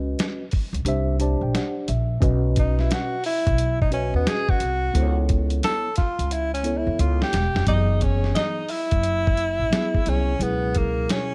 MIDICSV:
0, 0, Header, 1, 6, 480
1, 0, Start_track
1, 0, Tempo, 681818
1, 1566, Time_signature, 4, 2, 24, 8
1, 7987, End_track
2, 0, Start_track
2, 0, Title_t, "Clean electric guitar"
2, 0, Program_c, 0, 27
2, 5408, Note_on_c, 0, 75, 81
2, 5641, Note_off_c, 0, 75, 0
2, 5641, Note_on_c, 0, 73, 74
2, 5877, Note_off_c, 0, 73, 0
2, 5880, Note_on_c, 0, 75, 89
2, 6121, Note_off_c, 0, 75, 0
2, 6121, Note_on_c, 0, 76, 83
2, 7083, Note_off_c, 0, 76, 0
2, 7083, Note_on_c, 0, 73, 72
2, 7338, Note_off_c, 0, 73, 0
2, 7338, Note_on_c, 0, 71, 72
2, 7570, Note_off_c, 0, 71, 0
2, 7570, Note_on_c, 0, 70, 63
2, 7814, Note_off_c, 0, 70, 0
2, 7814, Note_on_c, 0, 73, 80
2, 7987, Note_off_c, 0, 73, 0
2, 7987, End_track
3, 0, Start_track
3, 0, Title_t, "Tine electric piano"
3, 0, Program_c, 1, 4
3, 0, Note_on_c, 1, 61, 78
3, 0, Note_on_c, 1, 66, 69
3, 0, Note_on_c, 1, 71, 69
3, 0, Note_on_c, 1, 75, 83
3, 302, Note_off_c, 1, 61, 0
3, 306, Note_off_c, 1, 66, 0
3, 309, Note_off_c, 1, 71, 0
3, 312, Note_off_c, 1, 75, 0
3, 603, Note_on_c, 1, 62, 90
3, 609, Note_on_c, 1, 67, 84
3, 616, Note_on_c, 1, 72, 79
3, 623, Note_on_c, 1, 76, 105
3, 810, Note_off_c, 1, 62, 0
3, 813, Note_off_c, 1, 67, 0
3, 817, Note_off_c, 1, 72, 0
3, 820, Note_off_c, 1, 76, 0
3, 840, Note_on_c, 1, 62, 91
3, 849, Note_on_c, 1, 67, 77
3, 853, Note_on_c, 1, 72, 72
3, 853, Note_on_c, 1, 81, 72
3, 861, Note_on_c, 1, 74, 84
3, 994, Note_off_c, 1, 81, 0
3, 1006, Note_on_c, 1, 79, 68
3, 1082, Note_off_c, 1, 79, 0
3, 1087, Note_on_c, 1, 78, 65
3, 1310, Note_off_c, 1, 78, 0
3, 1318, Note_off_c, 1, 62, 0
3, 1322, Note_off_c, 1, 67, 0
3, 1324, Note_off_c, 1, 72, 0
3, 1328, Note_off_c, 1, 74, 0
3, 1331, Note_on_c, 1, 76, 68
3, 1552, Note_off_c, 1, 76, 0
3, 1552, Note_on_c, 1, 61, 92
3, 1562, Note_on_c, 1, 66, 82
3, 1567, Note_on_c, 1, 71, 77
3, 1574, Note_on_c, 1, 75, 98
3, 2216, Note_off_c, 1, 61, 0
3, 2221, Note_off_c, 1, 66, 0
3, 2223, Note_off_c, 1, 71, 0
3, 2227, Note_off_c, 1, 75, 0
3, 2752, Note_on_c, 1, 61, 66
3, 2758, Note_on_c, 1, 66, 67
3, 2765, Note_on_c, 1, 71, 69
3, 2771, Note_on_c, 1, 75, 79
3, 3233, Note_off_c, 1, 61, 0
3, 3237, Note_off_c, 1, 66, 0
3, 3240, Note_off_c, 1, 71, 0
3, 3243, Note_off_c, 1, 75, 0
3, 3474, Note_on_c, 1, 59, 75
3, 3481, Note_on_c, 1, 64, 70
3, 3488, Note_on_c, 1, 69, 73
3, 3497, Note_on_c, 1, 72, 65
3, 3539, Note_on_c, 1, 73, 90
3, 3551, Note_off_c, 1, 72, 0
3, 4136, Note_off_c, 1, 59, 0
3, 4140, Note_off_c, 1, 64, 0
3, 4143, Note_off_c, 1, 69, 0
3, 4169, Note_off_c, 1, 73, 0
3, 4670, Note_on_c, 1, 59, 73
3, 4677, Note_on_c, 1, 64, 69
3, 4687, Note_on_c, 1, 69, 66
3, 4692, Note_on_c, 1, 73, 82
3, 5153, Note_off_c, 1, 59, 0
3, 5156, Note_off_c, 1, 64, 0
3, 5161, Note_off_c, 1, 69, 0
3, 5164, Note_off_c, 1, 73, 0
3, 5399, Note_on_c, 1, 54, 74
3, 5405, Note_on_c, 1, 59, 71
3, 5411, Note_on_c, 1, 52, 68
3, 5418, Note_on_c, 1, 67, 66
3, 5464, Note_on_c, 1, 68, 79
3, 5471, Note_off_c, 1, 67, 0
3, 6059, Note_off_c, 1, 54, 0
3, 6062, Note_off_c, 1, 59, 0
3, 6065, Note_off_c, 1, 52, 0
3, 6092, Note_off_c, 1, 68, 0
3, 6835, Note_on_c, 1, 54, 80
3, 6845, Note_on_c, 1, 59, 78
3, 6848, Note_on_c, 1, 64, 78
3, 6855, Note_on_c, 1, 68, 83
3, 7022, Note_off_c, 1, 54, 0
3, 7027, Note_off_c, 1, 59, 0
3, 7028, Note_off_c, 1, 64, 0
3, 7032, Note_off_c, 1, 68, 0
3, 7077, Note_on_c, 1, 54, 62
3, 7083, Note_on_c, 1, 59, 62
3, 7089, Note_on_c, 1, 64, 63
3, 7099, Note_on_c, 1, 68, 76
3, 7263, Note_off_c, 1, 54, 0
3, 7266, Note_off_c, 1, 59, 0
3, 7269, Note_off_c, 1, 64, 0
3, 7274, Note_off_c, 1, 68, 0
3, 7314, Note_on_c, 1, 54, 76
3, 7321, Note_on_c, 1, 47, 68
3, 7327, Note_on_c, 1, 64, 70
3, 7334, Note_on_c, 1, 68, 79
3, 7976, Note_off_c, 1, 54, 0
3, 7980, Note_off_c, 1, 47, 0
3, 7983, Note_off_c, 1, 64, 0
3, 7987, Note_off_c, 1, 68, 0
3, 7987, End_track
4, 0, Start_track
4, 0, Title_t, "Tenor saxophone"
4, 0, Program_c, 2, 66
4, 1823, Note_on_c, 2, 63, 82
4, 1975, Note_on_c, 2, 64, 83
4, 1985, Note_off_c, 2, 63, 0
4, 2063, Note_on_c, 2, 66, 96
4, 2074, Note_off_c, 2, 64, 0
4, 2290, Note_off_c, 2, 66, 0
4, 2294, Note_on_c, 2, 64, 100
4, 2658, Note_off_c, 2, 64, 0
4, 2686, Note_on_c, 2, 63, 81
4, 2762, Note_off_c, 2, 63, 0
4, 2771, Note_on_c, 2, 61, 84
4, 2913, Note_off_c, 2, 61, 0
4, 2926, Note_on_c, 2, 59, 86
4, 3014, Note_on_c, 2, 68, 98
4, 3025, Note_off_c, 2, 59, 0
4, 3169, Note_on_c, 2, 66, 107
4, 3180, Note_off_c, 2, 68, 0
4, 3645, Note_off_c, 2, 66, 0
4, 3973, Note_on_c, 2, 69, 104
4, 4193, Note_off_c, 2, 69, 0
4, 4206, Note_on_c, 2, 65, 93
4, 4451, Note_on_c, 2, 64, 101
4, 4462, Note_off_c, 2, 65, 0
4, 4600, Note_off_c, 2, 64, 0
4, 4604, Note_on_c, 2, 61, 87
4, 4770, Note_on_c, 2, 64, 85
4, 4780, Note_off_c, 2, 61, 0
4, 4930, Note_on_c, 2, 65, 97
4, 4941, Note_off_c, 2, 64, 0
4, 5088, Note_off_c, 2, 65, 0
4, 5094, Note_on_c, 2, 67, 87
4, 5388, Note_off_c, 2, 67, 0
4, 5406, Note_on_c, 2, 63, 102
4, 5655, Note_on_c, 2, 61, 89
4, 5666, Note_off_c, 2, 63, 0
4, 5890, Note_off_c, 2, 61, 0
4, 5893, Note_on_c, 2, 63, 95
4, 6132, Note_on_c, 2, 64, 107
4, 6143, Note_off_c, 2, 63, 0
4, 7106, Note_on_c, 2, 61, 92
4, 7117, Note_off_c, 2, 64, 0
4, 7343, Note_on_c, 2, 59, 92
4, 7353, Note_off_c, 2, 61, 0
4, 7585, Note_on_c, 2, 58, 89
4, 7595, Note_off_c, 2, 59, 0
4, 7824, Note_on_c, 2, 61, 93
4, 7835, Note_off_c, 2, 58, 0
4, 7987, Note_off_c, 2, 61, 0
4, 7987, End_track
5, 0, Start_track
5, 0, Title_t, "Upright bass"
5, 0, Program_c, 3, 32
5, 0, Note_on_c, 3, 37, 94
5, 93, Note_off_c, 3, 37, 0
5, 513, Note_on_c, 3, 37, 87
5, 594, Note_off_c, 3, 37, 0
5, 597, Note_on_c, 3, 36, 99
5, 968, Note_off_c, 3, 36, 0
5, 994, Note_on_c, 3, 34, 78
5, 1074, Note_off_c, 3, 34, 0
5, 1326, Note_on_c, 3, 34, 88
5, 1545, Note_off_c, 3, 34, 0
5, 1562, Note_on_c, 3, 35, 107
5, 2016, Note_off_c, 3, 35, 0
5, 2444, Note_on_c, 3, 35, 84
5, 2894, Note_off_c, 3, 35, 0
5, 2913, Note_on_c, 3, 39, 90
5, 2994, Note_off_c, 3, 39, 0
5, 3240, Note_on_c, 3, 36, 86
5, 3461, Note_off_c, 3, 36, 0
5, 3481, Note_on_c, 3, 37, 104
5, 3935, Note_off_c, 3, 37, 0
5, 4357, Note_on_c, 3, 37, 85
5, 4810, Note_off_c, 3, 37, 0
5, 4835, Note_on_c, 3, 40, 88
5, 4915, Note_off_c, 3, 40, 0
5, 4921, Note_on_c, 3, 37, 102
5, 5065, Note_off_c, 3, 37, 0
5, 5159, Note_on_c, 3, 28, 88
5, 5304, Note_off_c, 3, 28, 0
5, 5312, Note_on_c, 3, 29, 88
5, 5393, Note_off_c, 3, 29, 0
5, 5401, Note_on_c, 3, 30, 93
5, 5855, Note_off_c, 3, 30, 0
5, 6280, Note_on_c, 3, 30, 81
5, 6732, Note_off_c, 3, 30, 0
5, 6755, Note_on_c, 3, 33, 77
5, 6835, Note_off_c, 3, 33, 0
5, 7083, Note_on_c, 3, 36, 79
5, 7303, Note_off_c, 3, 36, 0
5, 7321, Note_on_c, 3, 37, 100
5, 7775, Note_off_c, 3, 37, 0
5, 7987, End_track
6, 0, Start_track
6, 0, Title_t, "Drums"
6, 133, Note_on_c, 9, 42, 82
6, 140, Note_on_c, 9, 38, 111
6, 204, Note_off_c, 9, 42, 0
6, 211, Note_off_c, 9, 38, 0
6, 362, Note_on_c, 9, 46, 47
6, 374, Note_on_c, 9, 36, 87
6, 432, Note_off_c, 9, 46, 0
6, 444, Note_off_c, 9, 36, 0
6, 524, Note_on_c, 9, 42, 56
6, 595, Note_off_c, 9, 42, 0
6, 605, Note_on_c, 9, 42, 100
6, 675, Note_off_c, 9, 42, 0
6, 843, Note_on_c, 9, 42, 70
6, 913, Note_off_c, 9, 42, 0
6, 1089, Note_on_c, 9, 38, 109
6, 1090, Note_on_c, 9, 42, 83
6, 1160, Note_off_c, 9, 38, 0
6, 1161, Note_off_c, 9, 42, 0
6, 1323, Note_on_c, 9, 42, 70
6, 1394, Note_off_c, 9, 42, 0
6, 1561, Note_on_c, 9, 36, 109
6, 1565, Note_on_c, 9, 42, 81
6, 1632, Note_off_c, 9, 36, 0
6, 1635, Note_off_c, 9, 42, 0
6, 1803, Note_on_c, 9, 42, 80
6, 1811, Note_on_c, 9, 36, 86
6, 1873, Note_off_c, 9, 42, 0
6, 1882, Note_off_c, 9, 36, 0
6, 1963, Note_on_c, 9, 38, 35
6, 2033, Note_off_c, 9, 38, 0
6, 2046, Note_on_c, 9, 42, 82
6, 2053, Note_on_c, 9, 38, 109
6, 2117, Note_off_c, 9, 42, 0
6, 2124, Note_off_c, 9, 38, 0
6, 2279, Note_on_c, 9, 46, 51
6, 2349, Note_off_c, 9, 46, 0
6, 2441, Note_on_c, 9, 36, 86
6, 2441, Note_on_c, 9, 42, 60
6, 2511, Note_off_c, 9, 36, 0
6, 2511, Note_off_c, 9, 42, 0
6, 2523, Note_on_c, 9, 42, 104
6, 2593, Note_off_c, 9, 42, 0
6, 2687, Note_on_c, 9, 36, 85
6, 2758, Note_off_c, 9, 36, 0
6, 2758, Note_on_c, 9, 42, 65
6, 2829, Note_off_c, 9, 42, 0
6, 3005, Note_on_c, 9, 38, 113
6, 3006, Note_on_c, 9, 42, 89
6, 3076, Note_off_c, 9, 38, 0
6, 3077, Note_off_c, 9, 42, 0
6, 3159, Note_on_c, 9, 36, 102
6, 3229, Note_off_c, 9, 36, 0
6, 3239, Note_on_c, 9, 42, 80
6, 3310, Note_off_c, 9, 42, 0
6, 3485, Note_on_c, 9, 42, 91
6, 3555, Note_off_c, 9, 42, 0
6, 3724, Note_on_c, 9, 42, 73
6, 3730, Note_on_c, 9, 36, 85
6, 3794, Note_off_c, 9, 42, 0
6, 3800, Note_off_c, 9, 36, 0
6, 3874, Note_on_c, 9, 42, 49
6, 3945, Note_off_c, 9, 42, 0
6, 3965, Note_on_c, 9, 42, 86
6, 3972, Note_on_c, 9, 38, 100
6, 4036, Note_off_c, 9, 42, 0
6, 4042, Note_off_c, 9, 38, 0
6, 4193, Note_on_c, 9, 42, 71
6, 4208, Note_on_c, 9, 38, 31
6, 4211, Note_on_c, 9, 36, 83
6, 4264, Note_off_c, 9, 42, 0
6, 4278, Note_off_c, 9, 38, 0
6, 4281, Note_off_c, 9, 36, 0
6, 4360, Note_on_c, 9, 42, 56
6, 4430, Note_off_c, 9, 42, 0
6, 4443, Note_on_c, 9, 42, 96
6, 4514, Note_off_c, 9, 42, 0
6, 4610, Note_on_c, 9, 42, 50
6, 4676, Note_off_c, 9, 42, 0
6, 4676, Note_on_c, 9, 42, 67
6, 4746, Note_off_c, 9, 42, 0
6, 4924, Note_on_c, 9, 42, 92
6, 4994, Note_off_c, 9, 42, 0
6, 5081, Note_on_c, 9, 38, 69
6, 5152, Note_off_c, 9, 38, 0
6, 5159, Note_on_c, 9, 42, 74
6, 5167, Note_on_c, 9, 38, 92
6, 5230, Note_off_c, 9, 42, 0
6, 5237, Note_off_c, 9, 38, 0
6, 5322, Note_on_c, 9, 38, 92
6, 5392, Note_off_c, 9, 38, 0
6, 5397, Note_on_c, 9, 42, 88
6, 5399, Note_on_c, 9, 36, 104
6, 5467, Note_off_c, 9, 42, 0
6, 5469, Note_off_c, 9, 36, 0
6, 5639, Note_on_c, 9, 42, 63
6, 5648, Note_on_c, 9, 36, 78
6, 5710, Note_off_c, 9, 42, 0
6, 5719, Note_off_c, 9, 36, 0
6, 5802, Note_on_c, 9, 38, 34
6, 5872, Note_off_c, 9, 38, 0
6, 5881, Note_on_c, 9, 42, 76
6, 5888, Note_on_c, 9, 38, 105
6, 5952, Note_off_c, 9, 42, 0
6, 5959, Note_off_c, 9, 38, 0
6, 6114, Note_on_c, 9, 46, 46
6, 6185, Note_off_c, 9, 46, 0
6, 6275, Note_on_c, 9, 42, 53
6, 6279, Note_on_c, 9, 36, 83
6, 6345, Note_off_c, 9, 42, 0
6, 6350, Note_off_c, 9, 36, 0
6, 6361, Note_on_c, 9, 42, 90
6, 6431, Note_off_c, 9, 42, 0
6, 6528, Note_on_c, 9, 36, 89
6, 6598, Note_off_c, 9, 36, 0
6, 6599, Note_on_c, 9, 42, 65
6, 6669, Note_off_c, 9, 42, 0
6, 6848, Note_on_c, 9, 38, 108
6, 6849, Note_on_c, 9, 42, 89
6, 6918, Note_off_c, 9, 38, 0
6, 6919, Note_off_c, 9, 42, 0
6, 7002, Note_on_c, 9, 36, 93
6, 7072, Note_off_c, 9, 36, 0
6, 7082, Note_on_c, 9, 42, 77
6, 7152, Note_off_c, 9, 42, 0
6, 7327, Note_on_c, 9, 42, 84
6, 7397, Note_off_c, 9, 42, 0
6, 7565, Note_on_c, 9, 42, 73
6, 7574, Note_on_c, 9, 36, 78
6, 7635, Note_off_c, 9, 42, 0
6, 7645, Note_off_c, 9, 36, 0
6, 7811, Note_on_c, 9, 42, 82
6, 7817, Note_on_c, 9, 38, 114
6, 7881, Note_off_c, 9, 42, 0
6, 7888, Note_off_c, 9, 38, 0
6, 7987, End_track
0, 0, End_of_file